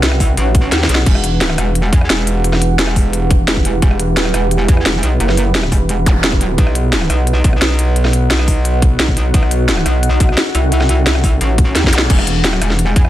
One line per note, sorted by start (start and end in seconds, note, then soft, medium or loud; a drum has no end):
0.00 0.36 C2 loud
0.00 1.02 D#4 medium
0.00 1.02 F#4 medium
0.00 1.02 B4 medium
0.00 6.54 F#5 medium
0.00 snare loud
0.00 closed hi-hat medium
0.12 cross-stick soft
0.20 kick medium
0.20 open hi-hat medium
0.37 0.71 A1 medium
0.37 closed hi-hat medium
0.55 kick loud
0.55 closed hi-hat medium
0.72 0.88 D#2 loud
0.72 snare medium
0.72 closed hi-hat medium
0.83 snare medium
0.89 1.05 B1 loud
0.89 closed hi-hat loud
0.95 snare loud
1.06 1.57 E1 loud
1.06 6.54 E4 medium
1.06 6.54 G4 medium
1.06 9.30 B4 medium
1.06 kick loud
1.06 closed hi-hat medium
1.06 crash medium
1.15 cross-stick soft
1.24 closed hi-hat loud
1.41 snare loud
1.41 closed hi-hat medium
1.50 cross-stick medium
1.58 1.91 E1 loud
1.58 cross-stick medium
1.58 closed hi-hat loud
1.75 closed hi-hat medium
1.93 2.08 E2 loud
1.93 kick loud
1.93 closed hi-hat medium
2.01 cross-stick soft
2.10 3.46 E1 loud
2.10 snare loud
2.10 closed hi-hat medium
2.27 closed hi-hat loud
2.44 closed hi-hat medium
2.53 cross-stick soft
2.53 snare soft
2.62 closed hi-hat medium
2.79 snare loud
2.79 closed hi-hat medium
2.87 cross-stick medium
2.96 kick medium
2.96 open hi-hat medium
3.13 closed hi-hat medium
3.31 kick loud
3.31 closed hi-hat medium
3.48 3.81 E1 loud
3.48 snare loud
3.48 closed hi-hat medium
3.56 kick medium
3.65 closed hi-hat medium
3.82 4.33 E1 loud
3.82 kick loud
3.82 closed hi-hat medium
3.91 cross-stick soft
4.00 closed hi-hat medium
4.17 snare loud
4.17 closed hi-hat medium
4.25 cross-stick soft
4.34 4.67 E1 loud
4.34 cross-stick soft
4.34 closed hi-hat medium
4.51 closed hi-hat medium
4.68 4.84 E2 loud
4.68 kick loud
4.68 closed hi-hat medium
4.77 cross-stick soft
4.86 5.02 E1 loud
4.86 snare loud
4.86 closed hi-hat medium
5.03 5.19 B1 medium
5.03 closed hi-hat medium
5.20 5.71 F#1 medium
5.20 closed hi-hat medium
5.29 cross-stick soft
5.29 snare soft
5.37 closed hi-hat medium
5.55 snare loud
5.55 closed hi-hat medium
5.63 cross-stick soft
5.72 6.32 E1 loud
5.72 kick medium
5.72 open hi-hat medium
5.89 closed hi-hat medium
6.06 kick loud
6.06 closed hi-hat medium
6.06 zap medium
6.24 snare loud
6.24 closed hi-hat medium
6.32 6.57 D#1 loud
6.32 kick medium
6.41 closed hi-hat medium
6.58 7.08 B1 medium
6.58 12.06 D#4 medium
6.58 12.06 F#4 medium
6.58 12.06 F#5 medium
6.58 kick loud
6.58 closed hi-hat medium
6.67 cross-stick soft
6.75 closed hi-hat medium
6.93 snare loud
6.93 closed hi-hat medium
7.01 cross-stick soft
7.10 7.43 B1 loud
7.10 cross-stick soft
7.10 closed hi-hat medium
7.27 closed hi-hat medium
7.44 7.60 B1 loud
7.44 kick loud
7.44 closed hi-hat medium
7.53 cross-stick soft
7.62 8.98 B1 loud
7.62 snare loud
7.62 closed hi-hat medium
7.79 closed hi-hat medium
7.96 closed hi-hat medium
8.05 cross-stick soft
8.05 snare soft
8.13 closed hi-hat medium
8.31 snare loud
8.31 closed hi-hat medium
8.39 cross-stick soft
8.48 kick medium
8.48 open hi-hat medium
8.65 closed hi-hat medium
8.82 kick loud
8.82 closed hi-hat medium
9.00 9.33 B1 loud
9.00 snare loud
9.00 closed hi-hat medium
9.08 kick medium
9.17 closed hi-hat medium
9.34 9.84 B1 loud
9.34 12.07 A4 medium
9.34 kick loud
9.34 closed hi-hat medium
9.43 cross-stick soft
9.51 closed hi-hat loud
9.69 snare loud
9.69 closed hi-hat medium
9.77 cross-stick soft
9.86 10.19 B1 loud
9.86 cross-stick soft
9.86 closed hi-hat loud
10.03 closed hi-hat medium
10.20 10.36 B1 loud
10.20 kick loud
10.20 closed hi-hat medium
10.29 cross-stick soft
10.37 snare loud
10.37 closed hi-hat medium
10.55 11.40 C2 loud
10.55 closed hi-hat medium
10.72 closed hi-hat medium
10.81 cross-stick soft
10.81 snare soft
10.89 closed hi-hat loud
11.06 snare loud
11.06 closed hi-hat medium
11.15 cross-stick medium
11.24 kick medium
11.24 open hi-hat medium
11.41 11.74 A1 loud
11.41 closed hi-hat medium
11.58 kick loud
11.58 closed hi-hat loud
11.75 11.91 D#2 loud
11.75 snare medium
11.75 closed hi-hat medium
11.84 kick medium
11.84 snare medium
11.93 12.09 B1 loud
11.93 closed hi-hat loud
11.93 zap medium
11.98 snare medium
12.10 12.60 E1 loud
12.10 13.09 E4 medium
12.10 13.09 G4 medium
12.10 13.09 B4 medium
12.10 13.09 F#5 loud
12.10 kick loud
12.10 closed hi-hat medium
12.10 crash loud
12.19 cross-stick soft
12.27 closed hi-hat loud
12.44 snare loud
12.44 closed hi-hat medium
12.53 cross-stick medium
12.62 12.95 E1 loud
12.62 cross-stick medium
12.62 closed hi-hat loud
12.70 snare soft
12.79 closed hi-hat medium
12.96 13.09 E2 loud
12.96 kick loud
12.96 closed hi-hat loud
13.05 cross-stick soft